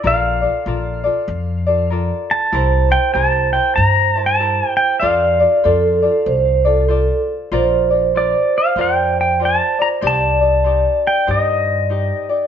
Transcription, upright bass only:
X:1
M:4/4
L:1/8
Q:"Swing" 1/4=96
K:F
V:1 name="Upright bass" clef=bass
B,,,2 B,,,2 F,,4 | C,,2 C,,2 G,,4 | F,,2 F,,2 C,,4 | [K:Bb] B,,,4 F,,4 |
C,,4 G,,4 |]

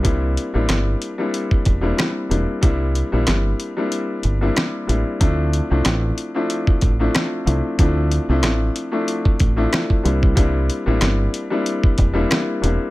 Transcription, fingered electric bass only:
X:1
M:4/4
L:1/16
Q:"Swing 16ths" 1/4=93
K:Dm
V:1 name="Fingered electric bass" clef=bass
C,,3 A,,, G,,,2 z4 E,,,2 z2 E,,, z | C,,3 B,,, G,,,2 z4 G,,,2 z2 A,,, z | D,,3 C,, A,,,2 z4 A,,,2 z2 C,, z | D,,3 C,, A,,,2 z4 A,,,2 z2 C,,2- |
C,,3 A,,, G,,,2 z4 E,,,2 z2 E,,, z |]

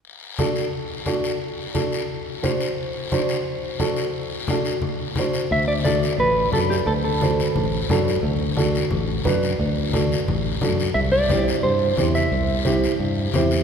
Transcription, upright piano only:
X:1
M:4/4
L:1/8
Q:1/4=176
K:Dmix
V:1 name="Upright piano"
z2 [DFA] z3 [DFA] z | z2 [DFA] z3 [DFc] z | z2 [DFc] z3 [DFA] z | z2 [DFA] z3 [DFc] z |
z2 [DFA] z3 [DFA] z | z2 [DFc] z3 [DFA] z | z2 [DFA] z3 [DFB] z | z2 [DFA] z3 [DFA] z |
z2 [CEG] z3 [CEG] z | z2 [CEG] z3 [CEG] z |]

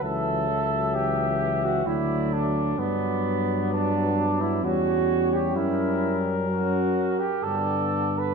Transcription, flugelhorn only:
X:1
M:3/4
L:1/16
Q:1/4=64
K:Glyd
V:1 name="Flugelhorn"
A4 G3 F E2 D2 | B,4 D3 E F3 G | E3 z F3 G A3 B |]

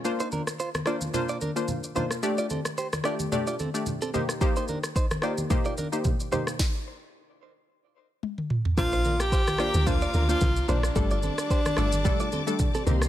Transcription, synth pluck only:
X:1
M:4/4
L:1/16
Q:"Swing 16ths" 1/4=110
K:Bb
V:1 name="Synth pluck"
[B,DFc]6 [B,DFc]2 [B,DFc] z2 [B,DFc] z2 [B,DFc] z | [A,DGd]6 [A,DGd]2 [A,DGd] z2 [A,DGd] z2 [B,EGc] z | [B,EGc]6 [B,EGc]2 [B,EGc] z2 [B,EGc] z2 [B,EGc] z | z16 |
[B,DFc]6 [B,DFc]2 [B,DFc] z2 [B,DFc] z2 [B,DFc] z | [G,A,DA]6 [G,A,DA]2 [G,A,DA] z2 [G,A,DA] z2 [E,B,CG] z |]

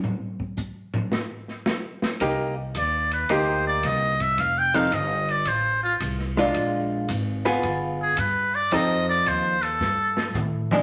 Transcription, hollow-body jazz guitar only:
X:1
M:4/4
L:1/8
Q:"Swing" 1/4=110
K:Fdor
V:1 name="Hollow-body jazz guitar"
z8 | [B,EG] z3 [B,EG]3 z | z [F,CE=A] z4 z [_A,DF]- | [A,DF]2 z [_CFA]3 z2 |
[F,CE=A]3 z4 [F,_A,D] |]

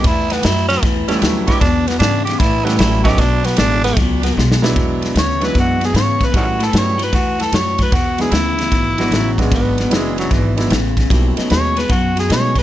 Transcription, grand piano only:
X:1
M:4/4
L:1/8
Q:"Swing" 1/4=151
K:Emix
V:1 name="Grand piano"
z4 z [=G,A,B,CE]2 [F,^G,B,DE] | z4 z [=G,A,B,CE]2 [F,A,B,C^D] | z6 z [F,G,B,DE]- | [F,G,B,DE]2 z [F,G,B,DE]3 z2 |
[=G,A,B,CE] z [G,A,B,CE] z4 z | z [F,G,B,DE] z3 [F,G,B,DF] z [F,G,B,DF]- | [F,G,B,DF]2 [F,G,B,DE]3 [F,G,B,DE] z2 | [=G,^A,=CDE] [F,=A,B,^C^D]2 z3 [F,A,B,CD] z |]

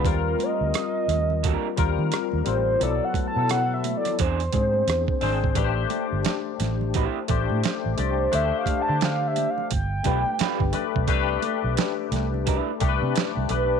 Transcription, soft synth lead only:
X:1
M:4/4
L:1/8
Q:"Swing 16ths" 1/4=87
K:C
V:1 name="Soft synth lead"
_B _e4- e z c | (3d ^f a (3f e d c4- | c z6 c | (3e f a (3f e f g4- |
g z6 B |]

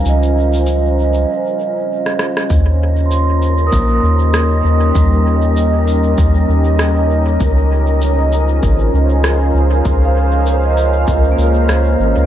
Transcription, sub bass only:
X:1
M:4/4
L:1/16
Q:"Swing 16ths" 1/4=98
K:Ebmix
V:1 name="Sub bass" clef=bass
D,,8 z8 | E,,8 B,,,2 E,,4 E,,2 | E,,8 E,,2 E,,6 | D,,8 A,,,2 D,,4 D,,2 |
D,,8 D,,2 D,,2 D,,2 A,,, D,, |]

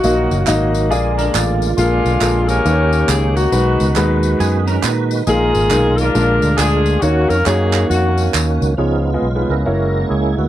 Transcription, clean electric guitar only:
X:1
M:4/4
L:1/8
Q:"Swing" 1/4=137
K:Ebm
V:1 name="Clean electric guitar"
z4 A [=DB] [F=d]2- | [F=d] z6 z | z4 [CA] [DB] [Ec]2 | z8 |
z8 | z8 |]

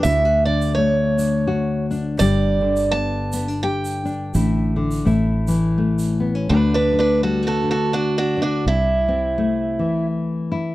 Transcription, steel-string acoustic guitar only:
X:1
M:3/4
L:1/8
Q:"Swing" 1/4=84
K:D
V:1 name="Steel-string acoustic guitar"
e d c3 z | d2 a2 g2- | g4- g z | (3[DB] [DB] [DB] (3[FA] [FA] [FA] (3[DF] [DF] [DF] |
E4 z2 |]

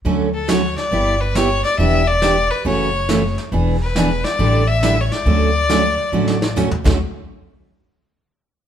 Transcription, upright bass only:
X:1
M:4/4
L:1/8
Q:"Swing" 1/4=138
K:D
V:1 name="Upright bass" clef=bass
D,,4 G,,,4 | E,,,4 F,,,4 | E,,,4 A,,,4 | D,,4 A,,,3 D,, |
z8 |]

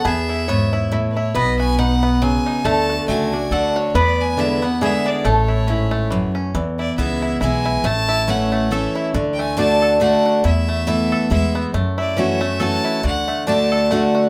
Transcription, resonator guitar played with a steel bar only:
X:1
M:3/4
L:1/8
Q:"Swing" 1/4=138
K:Emix
V:1 name="Resonator guitar played with a steel bar"
G2 c3 z | B6 | A6 | B4 G2 |
A2 E3 z | z6 | z6 | z6 |
z6 | z6 | z6 |]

